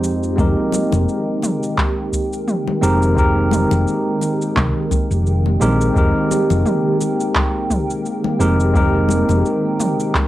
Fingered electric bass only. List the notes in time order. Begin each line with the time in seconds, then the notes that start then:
0.38 F1
0.92 F1
2.82 F1
3.71 F1
4.57 C2
5.11 F1
5.61 A#1
5.96 F1
6.50 F1
8.40 F1
9.29 F1